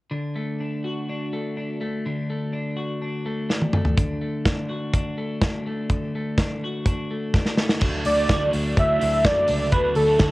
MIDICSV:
0, 0, Header, 1, 6, 480
1, 0, Start_track
1, 0, Key_signature, 2, "major"
1, 0, Tempo, 480384
1, 113, Time_signature, 4, 2, 24, 8
1, 10304, End_track
2, 0, Start_track
2, 0, Title_t, "Soft synth lead"
2, 0, Program_c, 0, 80
2, 8050, Note_on_c, 0, 74, 111
2, 8493, Note_off_c, 0, 74, 0
2, 8783, Note_on_c, 0, 76, 101
2, 9247, Note_on_c, 0, 74, 104
2, 9262, Note_off_c, 0, 76, 0
2, 9706, Note_off_c, 0, 74, 0
2, 9712, Note_on_c, 0, 71, 95
2, 9937, Note_off_c, 0, 71, 0
2, 9952, Note_on_c, 0, 69, 81
2, 10304, Note_off_c, 0, 69, 0
2, 10304, End_track
3, 0, Start_track
3, 0, Title_t, "Clean electric guitar"
3, 0, Program_c, 1, 27
3, 114, Note_on_c, 1, 50, 67
3, 357, Note_on_c, 1, 57, 51
3, 605, Note_on_c, 1, 62, 48
3, 843, Note_on_c, 1, 66, 55
3, 1089, Note_off_c, 1, 62, 0
3, 1093, Note_on_c, 1, 62, 50
3, 1326, Note_off_c, 1, 57, 0
3, 1330, Note_on_c, 1, 57, 48
3, 1566, Note_off_c, 1, 62, 0
3, 1570, Note_on_c, 1, 62, 49
3, 1804, Note_off_c, 1, 57, 0
3, 1808, Note_on_c, 1, 57, 49
3, 2053, Note_off_c, 1, 50, 0
3, 2057, Note_on_c, 1, 50, 70
3, 2291, Note_off_c, 1, 57, 0
3, 2295, Note_on_c, 1, 57, 51
3, 2523, Note_off_c, 1, 62, 0
3, 2527, Note_on_c, 1, 62, 53
3, 2758, Note_off_c, 1, 66, 0
3, 2762, Note_on_c, 1, 66, 55
3, 3009, Note_off_c, 1, 62, 0
3, 3013, Note_on_c, 1, 62, 52
3, 3249, Note_off_c, 1, 57, 0
3, 3253, Note_on_c, 1, 57, 52
3, 3488, Note_off_c, 1, 62, 0
3, 3492, Note_on_c, 1, 62, 52
3, 3730, Note_off_c, 1, 57, 0
3, 3734, Note_on_c, 1, 57, 49
3, 3965, Note_off_c, 1, 50, 0
3, 3969, Note_on_c, 1, 50, 76
3, 4206, Note_off_c, 1, 57, 0
3, 4210, Note_on_c, 1, 57, 50
3, 4450, Note_off_c, 1, 62, 0
3, 4454, Note_on_c, 1, 62, 52
3, 4685, Note_off_c, 1, 66, 0
3, 4689, Note_on_c, 1, 66, 58
3, 4932, Note_off_c, 1, 62, 0
3, 4936, Note_on_c, 1, 62, 56
3, 5170, Note_off_c, 1, 57, 0
3, 5174, Note_on_c, 1, 57, 50
3, 5414, Note_off_c, 1, 62, 0
3, 5418, Note_on_c, 1, 62, 50
3, 5657, Note_off_c, 1, 57, 0
3, 5661, Note_on_c, 1, 57, 51
3, 5905, Note_off_c, 1, 50, 0
3, 5909, Note_on_c, 1, 50, 71
3, 6144, Note_off_c, 1, 57, 0
3, 6148, Note_on_c, 1, 57, 51
3, 6381, Note_off_c, 1, 62, 0
3, 6385, Note_on_c, 1, 62, 52
3, 6632, Note_off_c, 1, 66, 0
3, 6636, Note_on_c, 1, 66, 56
3, 6864, Note_off_c, 1, 62, 0
3, 6868, Note_on_c, 1, 62, 54
3, 7099, Note_off_c, 1, 57, 0
3, 7103, Note_on_c, 1, 57, 50
3, 7331, Note_off_c, 1, 62, 0
3, 7335, Note_on_c, 1, 62, 51
3, 7571, Note_off_c, 1, 57, 0
3, 7575, Note_on_c, 1, 57, 50
3, 7811, Note_off_c, 1, 50, 0
3, 7815, Note_on_c, 1, 50, 71
3, 7817, Note_off_c, 1, 66, 0
3, 7821, Note_on_c, 1, 66, 53
3, 8059, Note_off_c, 1, 57, 0
3, 8063, Note_on_c, 1, 57, 54
3, 8290, Note_off_c, 1, 66, 0
3, 8304, Note_on_c, 1, 66, 57
3, 8544, Note_off_c, 1, 62, 0
3, 8548, Note_on_c, 1, 62, 55
3, 8762, Note_off_c, 1, 57, 0
3, 8774, Note_on_c, 1, 57, 58
3, 9006, Note_off_c, 1, 62, 0
3, 9010, Note_on_c, 1, 62, 51
3, 9232, Note_off_c, 1, 57, 0
3, 9244, Note_on_c, 1, 57, 55
3, 9487, Note_off_c, 1, 62, 0
3, 9491, Note_on_c, 1, 62, 52
3, 9722, Note_off_c, 1, 50, 0
3, 9723, Note_off_c, 1, 66, 0
3, 9726, Note_on_c, 1, 50, 75
3, 9735, Note_on_c, 1, 66, 63
3, 9959, Note_off_c, 1, 57, 0
3, 9974, Note_on_c, 1, 57, 56
3, 10190, Note_off_c, 1, 66, 0
3, 10202, Note_on_c, 1, 66, 58
3, 10304, Note_off_c, 1, 50, 0
3, 10304, Note_off_c, 1, 57, 0
3, 10304, Note_off_c, 1, 62, 0
3, 10304, Note_off_c, 1, 66, 0
3, 10304, End_track
4, 0, Start_track
4, 0, Title_t, "Overdriven electric guitar"
4, 0, Program_c, 2, 29
4, 7793, Note_on_c, 2, 50, 55
4, 7807, Note_on_c, 2, 54, 57
4, 7814, Note_on_c, 2, 57, 62
4, 7820, Note_on_c, 2, 62, 63
4, 8138, Note_off_c, 2, 62, 0
4, 8146, Note_off_c, 2, 57, 0
4, 8150, Note_on_c, 2, 62, 64
4, 8152, Note_off_c, 2, 54, 0
4, 8158, Note_off_c, 2, 50, 0
4, 8158, Note_on_c, 2, 57, 60
4, 8164, Note_on_c, 2, 54, 52
4, 8172, Note_on_c, 2, 50, 54
4, 8492, Note_off_c, 2, 50, 0
4, 8504, Note_on_c, 2, 50, 75
4, 8506, Note_off_c, 2, 54, 0
4, 8510, Note_off_c, 2, 57, 0
4, 8513, Note_off_c, 2, 62, 0
4, 8518, Note_on_c, 2, 54, 74
4, 8522, Note_on_c, 2, 57, 70
4, 8525, Note_on_c, 2, 62, 81
4, 8978, Note_off_c, 2, 50, 0
4, 8981, Note_off_c, 2, 54, 0
4, 8982, Note_on_c, 2, 50, 52
4, 8989, Note_off_c, 2, 57, 0
4, 8993, Note_on_c, 2, 54, 55
4, 9001, Note_on_c, 2, 57, 59
4, 9007, Note_off_c, 2, 62, 0
4, 9011, Note_on_c, 2, 62, 56
4, 9450, Note_off_c, 2, 50, 0
4, 9451, Note_off_c, 2, 54, 0
4, 9454, Note_on_c, 2, 50, 54
4, 9463, Note_on_c, 2, 54, 48
4, 9464, Note_off_c, 2, 57, 0
4, 9476, Note_on_c, 2, 57, 58
4, 9478, Note_off_c, 2, 62, 0
4, 9482, Note_on_c, 2, 62, 59
4, 9688, Note_off_c, 2, 50, 0
4, 9700, Note_off_c, 2, 54, 0
4, 9700, Note_on_c, 2, 50, 50
4, 9704, Note_off_c, 2, 57, 0
4, 9711, Note_off_c, 2, 62, 0
4, 9712, Note_on_c, 2, 54, 54
4, 9716, Note_on_c, 2, 57, 54
4, 9723, Note_on_c, 2, 62, 57
4, 10044, Note_off_c, 2, 62, 0
4, 10047, Note_off_c, 2, 57, 0
4, 10056, Note_off_c, 2, 54, 0
4, 10056, Note_on_c, 2, 62, 64
4, 10059, Note_on_c, 2, 57, 54
4, 10060, Note_off_c, 2, 50, 0
4, 10068, Note_on_c, 2, 54, 57
4, 10072, Note_on_c, 2, 50, 52
4, 10304, Note_off_c, 2, 50, 0
4, 10304, Note_off_c, 2, 54, 0
4, 10304, Note_off_c, 2, 57, 0
4, 10304, Note_off_c, 2, 62, 0
4, 10304, End_track
5, 0, Start_track
5, 0, Title_t, "Picked electric bass"
5, 0, Program_c, 3, 34
5, 7808, Note_on_c, 3, 38, 84
5, 8003, Note_off_c, 3, 38, 0
5, 8052, Note_on_c, 3, 38, 85
5, 8245, Note_off_c, 3, 38, 0
5, 8285, Note_on_c, 3, 38, 87
5, 8480, Note_off_c, 3, 38, 0
5, 8532, Note_on_c, 3, 38, 76
5, 8724, Note_off_c, 3, 38, 0
5, 8761, Note_on_c, 3, 38, 91
5, 8958, Note_off_c, 3, 38, 0
5, 9016, Note_on_c, 3, 38, 86
5, 9241, Note_off_c, 3, 38, 0
5, 9241, Note_on_c, 3, 42, 74
5, 9436, Note_off_c, 3, 42, 0
5, 9487, Note_on_c, 3, 37, 76
5, 9680, Note_off_c, 3, 37, 0
5, 9712, Note_on_c, 3, 38, 88
5, 9911, Note_off_c, 3, 38, 0
5, 9954, Note_on_c, 3, 38, 90
5, 10151, Note_off_c, 3, 38, 0
5, 10192, Note_on_c, 3, 38, 94
5, 10304, Note_off_c, 3, 38, 0
5, 10304, End_track
6, 0, Start_track
6, 0, Title_t, "Drums"
6, 3496, Note_on_c, 9, 38, 49
6, 3596, Note_off_c, 9, 38, 0
6, 3611, Note_on_c, 9, 48, 55
6, 3711, Note_off_c, 9, 48, 0
6, 3727, Note_on_c, 9, 45, 76
6, 3827, Note_off_c, 9, 45, 0
6, 3846, Note_on_c, 9, 43, 78
6, 3946, Note_off_c, 9, 43, 0
6, 3972, Note_on_c, 9, 36, 78
6, 3972, Note_on_c, 9, 42, 67
6, 4072, Note_off_c, 9, 36, 0
6, 4072, Note_off_c, 9, 42, 0
6, 4451, Note_on_c, 9, 36, 98
6, 4452, Note_on_c, 9, 42, 58
6, 4454, Note_on_c, 9, 38, 88
6, 4551, Note_off_c, 9, 36, 0
6, 4552, Note_off_c, 9, 42, 0
6, 4554, Note_off_c, 9, 38, 0
6, 4932, Note_on_c, 9, 36, 89
6, 4936, Note_on_c, 9, 42, 66
6, 5032, Note_off_c, 9, 36, 0
6, 5035, Note_off_c, 9, 42, 0
6, 5413, Note_on_c, 9, 36, 97
6, 5413, Note_on_c, 9, 42, 59
6, 5418, Note_on_c, 9, 38, 92
6, 5513, Note_off_c, 9, 36, 0
6, 5513, Note_off_c, 9, 42, 0
6, 5518, Note_off_c, 9, 38, 0
6, 5893, Note_on_c, 9, 42, 62
6, 5894, Note_on_c, 9, 36, 80
6, 5993, Note_off_c, 9, 42, 0
6, 5994, Note_off_c, 9, 36, 0
6, 6373, Note_on_c, 9, 36, 94
6, 6374, Note_on_c, 9, 42, 57
6, 6376, Note_on_c, 9, 38, 83
6, 6473, Note_off_c, 9, 36, 0
6, 6474, Note_off_c, 9, 42, 0
6, 6476, Note_off_c, 9, 38, 0
6, 6853, Note_on_c, 9, 36, 84
6, 6853, Note_on_c, 9, 42, 62
6, 6953, Note_off_c, 9, 36, 0
6, 6953, Note_off_c, 9, 42, 0
6, 7333, Note_on_c, 9, 36, 95
6, 7339, Note_on_c, 9, 38, 45
6, 7433, Note_off_c, 9, 36, 0
6, 7439, Note_off_c, 9, 38, 0
6, 7450, Note_on_c, 9, 38, 48
6, 7550, Note_off_c, 9, 38, 0
6, 7568, Note_on_c, 9, 38, 67
6, 7668, Note_off_c, 9, 38, 0
6, 7686, Note_on_c, 9, 38, 76
6, 7786, Note_off_c, 9, 38, 0
6, 7801, Note_on_c, 9, 49, 79
6, 7809, Note_on_c, 9, 36, 91
6, 7901, Note_off_c, 9, 49, 0
6, 7909, Note_off_c, 9, 36, 0
6, 8042, Note_on_c, 9, 46, 68
6, 8142, Note_off_c, 9, 46, 0
6, 8287, Note_on_c, 9, 36, 96
6, 8288, Note_on_c, 9, 42, 59
6, 8290, Note_on_c, 9, 38, 89
6, 8387, Note_off_c, 9, 36, 0
6, 8388, Note_off_c, 9, 42, 0
6, 8390, Note_off_c, 9, 38, 0
6, 8525, Note_on_c, 9, 46, 62
6, 8625, Note_off_c, 9, 46, 0
6, 8764, Note_on_c, 9, 36, 91
6, 8766, Note_on_c, 9, 42, 68
6, 8864, Note_off_c, 9, 36, 0
6, 8866, Note_off_c, 9, 42, 0
6, 9007, Note_on_c, 9, 46, 63
6, 9107, Note_off_c, 9, 46, 0
6, 9238, Note_on_c, 9, 42, 64
6, 9240, Note_on_c, 9, 36, 105
6, 9243, Note_on_c, 9, 38, 96
6, 9338, Note_off_c, 9, 42, 0
6, 9340, Note_off_c, 9, 36, 0
6, 9343, Note_off_c, 9, 38, 0
6, 9470, Note_on_c, 9, 46, 70
6, 9570, Note_off_c, 9, 46, 0
6, 9712, Note_on_c, 9, 42, 65
6, 9716, Note_on_c, 9, 36, 87
6, 9812, Note_off_c, 9, 42, 0
6, 9816, Note_off_c, 9, 36, 0
6, 9944, Note_on_c, 9, 46, 72
6, 10044, Note_off_c, 9, 46, 0
6, 10184, Note_on_c, 9, 42, 63
6, 10186, Note_on_c, 9, 38, 82
6, 10190, Note_on_c, 9, 36, 102
6, 10284, Note_off_c, 9, 42, 0
6, 10286, Note_off_c, 9, 38, 0
6, 10290, Note_off_c, 9, 36, 0
6, 10304, End_track
0, 0, End_of_file